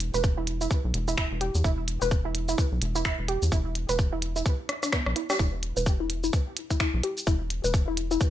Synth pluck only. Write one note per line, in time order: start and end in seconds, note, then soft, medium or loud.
0.14 0.19 B4 medium
0.38 0.41 E4 medium
0.61 0.66 E4 medium
1.08 1.13 E4 medium
1.17 1.25 E4 loud
1.41 1.44 G4 medium
1.64 1.69 E4 medium
2.02 2.07 B4 medium
2.25 2.29 E4 medium
2.49 2.54 E4 medium
2.95 3.01 E4 medium
3.05 3.12 E4 loud
3.28 3.31 G4 medium
3.52 3.57 E4 medium
3.89 3.94 B4 medium
4.13 4.16 E4 medium
4.36 4.41 E4 medium
4.83 4.86 D4 medium
4.93 4.95 B3 medium
5.16 5.19 E4 medium
5.30 5.33 G4 loud
5.39 5.44 E4 medium
5.77 5.82 B4 medium
6.00 6.04 E4 medium
6.24 6.29 E4 medium
6.71 6.76 E4 medium
6.80 6.87 E4 loud
7.04 7.06 G4 medium
7.27 7.32 E4 medium
7.64 7.69 B4 medium
7.88 7.91 E4 medium
8.11 8.16 E4 medium